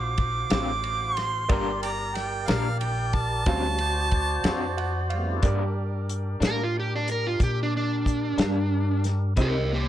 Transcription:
Already playing: A#1 F#4 C5 F5 D6
0.18 kick, ride
0.50 A1 D3 F#3 C4 F4, snare, ride
0.84 ride
1.17 C6, snare, ride
1.49 G1 G3 A#3 D4 G4 A#4 D5, kick, ride
1.82 D5 G5 A#5, ride
2.15 G5, snare, ride
2.48 A#1 G3 A#3 D4 A#4 F5, snare, ride
2.80 G5, ride
3.13 A5, kick, ride
3.46 D2 D3 F#3 G3 C4 C#4 F4 F#4 C5 F5, kick, ride
3.78 F#4 C5 D5, ride
4.11 kick, ride
4.44 F2 D3 F#3 C4 F4, snare, ride
4.77 F#5, ride
5.10 G3 F5, ride
5.17 A3 B3
5.21 C4 D4
5.27 E4 F4
5.32 G4
5.36 A4 B4
5.40 G2 G3 A#3 D4 G4 A#4 C5 D5, kick, closed hi-hat
6.09 closed hi-hat
6.40 G2 A2 G3 A#3 D4, snare, closed hi-hat
6.47 A#4
6.63 F4
6.80 G4
6.96 D4
7.08 A#4, closed hi-hat
7.27 F4
7.40 A#2 G4, kick, closed hi-hat
7.63 D4
7.77 D4
8.06 kick, closed hi-hat
8.38 G2 G3 A#3 D4, snare, closed hi-hat
9.04 snare, closed hi-hat
9.36 C2 C3 G3 G#3 C4 C#4 D#4 E4 G4 C5 D#5, kick, closed hi-hat
9.41 G4 A#4
9.73 A#3 C4 D#4 G4

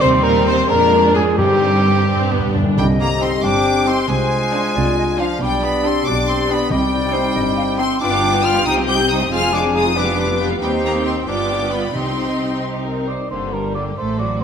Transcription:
0.00 D#2 C3 G3 C4 D#4 C5
0.22 A#2 A#4
0.46 C3 C5
0.68 F2 A#2 G#3 D4 A#4
1.14 G#2 G#4
1.37 G2 G3 C4 D#4 G4
2.08 G2 C4 D4
2.16 G2
2.23 G2
2.32 G2 B3
2.39 G2
2.47 G2
2.54 G2 D4
2.63 G2
2.77 C2 C3 G3 C4 G4 D#5 G5
3.00 A#3 A#5
3.20 C4 D#4 G4 G5 C6
3.43 G1 G2 D4 G5 D6
3.87 C4 D#4 G4 G5 C6
4.08 C2 C3 G#3 D4 F4 C5 G#5
4.53 D4 F4 D5
4.75 C2 C3 D5
4.98 D#5
5.19 F3 D4 F4 D5 F5
5.41 B1 B2 G3 G4 D5 G5
5.64 B3 B5
5.84 C4 D4 G4 G5 C6
6.06 B1 B2 D4 D5 D6
6.29 C4 C6
6.49 B3 D4 G4 G5 B5
6.70 C2 C3 G3 C4 D#4 D#5 G5
6.92 D5
7.13 C4 D#4 G4 C5 G5
7.35 G1 G2 D#5
7.57 F5
7.78 C4 D#4 G4 G5 C6
8.00 G1 G2 B3 D4 F4 B4 G5 D6
8.12 B3 D4 G4 F5
8.23 D4 F4 B4 G5
8.33 B3 D4 G4 F5
8.44 D4 F4 B4 G5 F6
8.55 B3 D4 G4 F5
8.66 C2 C3 G3 C4 D#4 G4 C5 G5 D#6
8.77 C4 G4 D#5
8.88 G3 D#4 G4 C5 G5 G6
8.99 C4 G4 D#5
9.09 G3 D#4 C5 G5 D#6
9.21 C4 G4 D#5
9.31 F1 F2 G#3 F4 G#4 F5 G#5 F6
9.42 C4 F4 G#4 G#5
9.53 G#3 D4 F4 G#4 F5 D6
9.63 C4 F4 G#4 G#5
9.74 G#3 D#4 F4 G#4 F5 D#6
9.85 C4 F4 G#4 G#5
9.94 G3 B3 D4 F4 G4 B4 G5 D6
10.05 B3 F4 G4 F5
10.16 G3 D4 F4 G5
10.28 B3 F4 G4 F5
10.38 G3 D4 F4 G5
10.49 B3 F4 G4 F5
10.61 D#2 G3 C4 D#4 G4 C5 G5
10.83 A#3 A#5
11.06 C4 C6
11.27 G1 G2 B3 D4 F4 G4 D5 G5 D6
11.72 B3 B5
11.94 C2 C3 C4 D#4 G4 D#5 G5 C6
12.64 G4 C5
12.86 A#4
13.08 C5 D5
13.30 G1 G2 D3 A#3 G4 C5
13.53 G3 D4 A#4
13.74 D3 A#3 G4 D5
13.97 A1 A2 A3 A4 C5
14.19 F#3 C4 F#4 D5

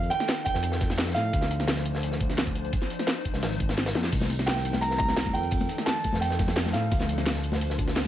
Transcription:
Already playing: F2 F3 D#4 A4 F5
0.03 closed hi-hat
0.10 G5, closed hi-hat
0.20 snare, closed hi-hat
0.28 snare, closed hi-hat
0.45 G5, kick, closed hi-hat
0.54 F2, snare
0.63 closed hi-hat
0.72 snare
0.81 F2, kick, snare, closed hi-hat
0.90 snare
0.98 snare, closed hi-hat, open hi-hat
1.07 snare
1.14 A2 F5, snare, closed hi-hat
1.33 D2 D4 C5, kick, closed hi-hat
1.41 snare
1.51 closed hi-hat
1.60 snare, closed hi-hat
1.68 snare, closed hi-hat
1.76 snare
1.85 closed hi-hat
1.95 D2, snare
2.03 closed hi-hat
2.12 snare
2.20 D2, kick, closed hi-hat
2.29 snare
2.38 snare, closed hi-hat
2.47 kick
2.55 closed hi-hat
2.65 closed hi-hat
2.73 D#4, kick, closed hi-hat
2.82 snare, closed hi-hat
2.90 closed hi-hat
2.99 snare, closed hi-hat
3.07 snare, closed hi-hat
3.25 kick, closed hi-hat
3.34 C#2, snare, closed hi-hat
3.43 G#1, snare, closed hi-hat
3.51 snare
3.60 kick, closed hi-hat
3.69 snare, closed hi-hat
3.77 snare, closed hi-hat
3.86 snare, closed hi-hat
3.95 F2, snare, closed hi-hat, high tom
4.03 snare
4.12 C2 D#3 C4 A#4, kick, closed hi-hat, ride, crash, muted conga
4.21 snare, high conga
4.30 closed hi-hat, ride, muted conga
4.39 snare, closed hi-hat
4.46 G5, snare, closed hi-hat, ride, high conga
4.56 snare, muted conga
4.65 closed hi-hat, ride
4.73 C2, snare, muted conga, high conga
4.81 A#5, closed hi-hat, ride
4.91 snare
4.98 C2 A#5, kick, closed hi-hat, ride, muted conga, high conga
5.08 snare
5.17 snare, closed hi-hat, ride, muted conga
5.26 kick, high conga
5.34 F2 F3 D#4 A4 G5, closed hi-hat, ride
5.43 closed hi-hat, muted conga
5.51 kick, closed hi-hat, ride
5.60 closed hi-hat, muted conga, high conga
5.69 closed hi-hat, ride
5.78 snare, closed hi-hat
5.86 A5, snare, closed hi-hat, ride, muted conga, high conga
6.04 kick, closed hi-hat, ride, muted conga
6.13 F2, snare, high conga
6.21 G5, closed hi-hat, ride
6.30 snare, muted conga
6.39 F2, kick, snare, closed hi-hat, ride, high conga
6.48 snare, muted conga
6.56 snare, closed hi-hat, open hi-hat, ride
6.65 snare, high conga
6.73 A2 F5, snare, closed hi-hat, ride, muted conga
6.91 D2 D4 C5, kick, closed hi-hat, ride, muted conga
7.00 snare, high conga
7.09 closed hi-hat, ride
7.18 snare, closed hi-hat, muted conga
7.26 snare, closed hi-hat, ride, high conga
7.35 snare, muted conga
7.43 closed hi-hat, ride
7.52 D2, snare, high conga
7.61 closed hi-hat, ride, muted conga
7.70 snare
7.78 D2, kick, closed hi-hat, ride, muted conga, high conga
7.88 snare
7.96 snare, closed hi-hat, ride

